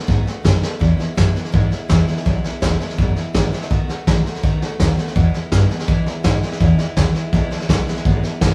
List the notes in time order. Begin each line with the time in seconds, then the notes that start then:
0.07 G#2 B2 D#3 A3 B3 F#4, kick, snare
0.25 A3 B3 F#4, muted upright bass stroke, snare
0.43 F#2 D#3 A3 B3 F#4, kick, snare, hi-hat pedal
0.62 A3 B3 F#4, muted upright bass stroke, snare
0.79 E2 B2 E3 G#3 B3 E4, kick, snare
0.97 E3 G#3 B3 E4, muted upright bass stroke, snare
1.15 F#2 E3 G#3 B3 E4, kick, snare, hi-hat pedal
1.34 E3 G#3 B3 E4, muted upright bass stroke, snare
1.45 snare
1.52 E2 G#2 B2 E3 G#3 B3 E4, kick, snare
1.71 E3 G#3 B3 E4, muted upright bass stroke, snare
1.88 E2 E3 G#3 B3 E4, kick, snare, hi-hat pedal
2.07 E3 G#3 B3 E4, muted upright bass stroke, snare
2.17 snare
2.25 B1 E2 B2 E3 G#3 B3 E4, kick, snare
2.44 E3 G#3 B3 E4, muted upright bass stroke, snare
2.61 E1 E3 G#3 B3 E4, kick, snare, hi-hat pedal
2.79 E3 G#3 B3 E4, muted upright bass stroke, snare
2.89 snare
2.98 F#1 E2 B2 E3 G#3 B3 E4, kick, snare
3.16 E3 G#3 B3 E4, muted upright bass stroke, snare
3.33 G#1 E3 G#3 B3 E4, kick, snare, hi-hat pedal
3.52 E3 G#3 B3 E4, muted upright bass stroke, snare
3.62 snare
3.70 B2 D#3 A3 B3 F#4, kick, snare
3.88 A3 B3 F#4, muted upright bass stroke, snare
4.07 A1 D#3 A3 B3 F#4, kick, snare, hi-hat pedal
4.25 A3 B3 F#4, muted upright bass stroke, snare
4.35 snare
4.43 C#2 B2 D#3 A3 B3 F#4, kick, snare
4.62 A3 B3 F#4, snare
4.79 D#2 D#3 A3 B3 F#4, kick, snare, hi-hat pedal
4.97 A3 B3 F#4, muted upright bass stroke, snare
5.07 snare
5.15 E2 B2 E3 G#3 B3 E4, kick, snare
5.34 E3 G#3 B3 E4, muted upright bass stroke, snare
5.52 G2 E3 G#3 B3 E4, kick, snare, hi-hat pedal
5.69 E3 G#3 B3 E4, muted upright bass stroke, snare
5.79 snare
5.87 E2 F#2 B2 E3 G#3 B3 E4, kick, snare
6.06 E3 G#3 B3 E4, muted upright bass stroke, snare
6.23 G#2 E3 G#3 B3 E4, kick, snare, hi-hat pedal
6.42 E3 G#3 B3 E4, muted upright bass stroke, snare
6.52 snare
6.60 E2 B2 E3 G#3 B3 E4, kick, snare
6.78 E3 G#3 B3 E4, snare
6.96 D#2 E3 G#3 B3 E4, kick, snare, hi-hat pedal
7.15 E3 G#3 B3 E4, muted upright bass stroke, snare
7.32 C#2 E2 B2 E3 G#3 B3 E4, kick, snare
7.51 E3 G#3 B3 E4, muted upright bass stroke, snare
7.60 snare
7.69 B1 E3 G#3 B3 E4, kick, snare, hi-hat pedal
7.87 E3 G#3 B3 E4, muted upright bass stroke, snare
7.96 snare
8.05 G#1 E2 B2 E3 G#3 B3 E4, kick, snare
8.22 E3 G#3 B3 E4, muted upright bass stroke, snare
8.41 G1 E3 G#3 B3 E4, kick, snare, hi-hat pedal